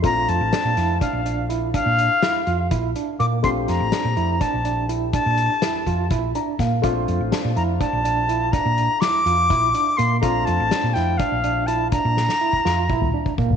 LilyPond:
<<
  \new Staff \with { instrumentName = "Flute" } { \time 7/8 \key bes \lydian \tempo 4 = 124 bes''8 a''4. f''4 r8 | f''2 r4 d'''8 | c'''8 bes''4. a''4 r8 | a''2 r4. |
r4. bes''8 a''4. | bes''4 d'''2 c'''8 | bes''8 a''4 g''8 f''4 a''8 | bes''2. r8 | }
  \new Staff \with { instrumentName = "Tine electric piano" } { \time 7/8 \key bes \lydian f'4 d'8 e'8 d'8 d'8 e'8 | d'4 e'8 f'8 e'8 d'8 bes8 | f'4 d'8 e'8 d'8 d'8 e'8 | d'4 e'8 f'8 e'8 d'8 bes8 |
f'4 d'8 e'8 d'8 d'8 e'8 | d'4 e'8 f'8 e'8 d'8 bes8 | f'4 d'8 e'8 d'8 d'8 e'8 | d'4 e'8 f'8 e'8 d'8 bes8 | }
  \new Staff \with { instrumentName = "Grand piano" } { \time 7/8 \key bes \lydian << { r2. r8 | r2. r8 | r2. r8 | r2 r8 bes''8 f''8 |
r2. r8 | r2. r8 | r2. r8 | r2. r8 | } \\ { <a c' d' f'>2.~ <a c' d' f'>8~ | <a c' d' f'>2.~ <a c' d' f'>8 | <a c' d' g'>2.~ <a c' d' g'>8~ | <a c' d' g'>2.~ <a c' d' g'>8 |
<a c' d' f'>2.~ <a c' d' f'>8~ | <a c' d' f'>2.~ <a c' d' f'>8 | <a c' d' f'>2.~ <a c' d' f'>8~ | <a c' d' f'>2.~ <a c' d' f'>8 | } >> }
  \new Staff \with { instrumentName = "Fingered electric bass" } { \clef bass \time 7/8 \key bes \lydian bes,,8 f,16 a,,16 r16 bes,16 f,8 r16 bes,,4~ bes,,16~ | bes,,16 bes,8 r8. f,8 bes,,8 r8 bes,8 | bes,,8 f,16 a,,16 r16 bes,16 f,8 r16 bes,,4~ bes,,16~ | bes,,16 bes,8 r8. f,8 bes,,8 r8 bes,8 |
bes,,8 f,16 a,,16 r16 bes,16 f,8 r16 bes,,4~ bes,,16~ | bes,,16 bes,8 r8. f,8 bes,,8 r8 bes,8 | bes,,8 f,16 a,,16 r16 bes,16 f,8 r16 bes,,4~ bes,,16~ | bes,,16 bes,8 r8. f,8 bes,,8 r8 bes,8 | }
  \new DrumStaff \with { instrumentName = "Drums" } \drummode { \time 7/8 <hh bd>8 hh8 <hh sn>8 <hh sn>8 <hh bd>8 hh8 hh8 | <hh bd>8 hh8 <hh sn>8 hh8 <hh bd>8 hh8 hh8 | <hh bd>8 <hh sn>8 <hh sn>8 hh8 <hh bd>8 hh8 hh8 | <hh bd>8 hh8 <hh sn>8 <hh bd>8 <hh bd>8 hh8 <hh bd sn>8 |
<hh bd>8 hh8 <hh sn>8 hh8 <hh bd>8 hh8 hh8 | <hh bd>8 hh8 <hh sn>8 hh8 <hh bd>8 hh8 hh8 | <hh bd>8 hh8 <hh sn>8 <hh sn>8 <hh bd>8 hh8 hh8 | <hh bd>8 sn16 sn16 r16 bd16 sn8 bd16 toml8 bd16 bd16 tomfh16 | }
>>